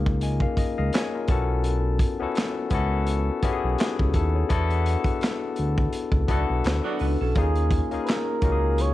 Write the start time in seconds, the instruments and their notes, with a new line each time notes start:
Already playing: analog synth bass C#2, tine electric piano A#3 C#4 D#4 F4 G#4
0.06 kick
0.21 tine electric piano D#5 G#5, closed hi-hat
0.40 tine electric piano A#4 F5, kick
0.57 analog synth bass C#2, tine electric piano D#5, kick, closed hi-hat
0.78 analog synth bass C#2, tine electric piano A#4 D#5 F5
0.93 tine electric piano G#4 C#5 G#5, snare, clap, closed hi-hat
1.15 tine electric piano F4 A#4
1.28 analog synth bass B1, tine electric piano B3 C#4 E4 F#4 A5, kick, closed hi-hat
1.32 tine electric piano A4
1.64 closed hi-hat
1.99 kick, closed hi-hat
2.20 analog synth bass C#2, tine electric piano B3 C#4 E4 F#4 A4
2.35 snare, clap, closed hi-hat
2.70 analog synth bass C#2, tine electric piano B3 C#4 E4 F#4, kick, closed hi-hat
2.75 tine electric piano A4
3.07 closed hi-hat
3.43 analog synth bass B1, tine electric piano B3 C#4 E4 F#4 G4, kick, closed hi-hat
3.52 tine electric piano G#4
3.64 analog synth bass B1
3.78 tine electric piano D#4 G#4, snare, clap, closed hi-hat
3.99 analog synth bass C#2, kick
4.14 analog synth bass D#2, tine electric piano E4 A4, kick, closed hi-hat
4.35 tine electric piano G#4 C#5
4.49 analog synth bass E2, tine electric piano B3 D4 E4 F#4 A4, kick, closed hi-hat
4.70 closed hi-hat
4.86 closed hi-hat
5.04 analog synth bass D2, kick, closed hi-hat
5.21 snare, clap, closed hi-hat
5.56 analog synth bass D2, closed hi-hat
5.78 kick
5.93 closed hi-hat
6.12 analog synth bass C#2, kick
6.28 analog synth bass C#2, horn section F#3 B3 D4 F#4, tine electric piano B3 D4 E4 F#4 A4, kick, closed hi-hat
6.50 analog synth bass B1
6.64 analog synth bass D2, snare, clap, closed hi-hat
6.84 horn section F#3 B3 D4 F#4, hollow-body jazz guitar F#4 D5
6.99 analog synth bass C#2, hollow-body jazz guitar D4 B4, open hi-hat
7.21 analog synth bass B1, hollow-body jazz guitar C#4 A4
7.35 analog synth bass D#2, tine electric piano A#3 C#4 D#4 F4 G#4, flugelhorn G#4, kick, closed hi-hat
7.55 closed hi-hat
7.71 kick, closed hi-hat
7.91 analog synth bass C#2, tine electric piano A#3 C#4 D#4 F4 G#4, closed hi-hat
8.03 flugelhorn B4, closed hi-hat
8.10 flugelhorn A#4, snare, clap
8.42 analog synth bass C#2, tine electric piano A#3 C#4 D#4 F4 F#4, kick, closed hi-hat
8.52 tine electric piano G#4
8.78 flugelhorn C#5, closed hi-hat